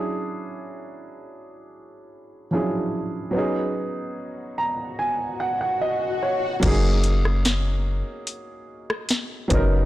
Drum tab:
CC |----------------|----------------|x---------------|
HH |----------------|----------------|x-x-x---x---x-x-|
SD |----------------|----------------|---ro------ro---|
BD |----------------|----------------|o-------------o-|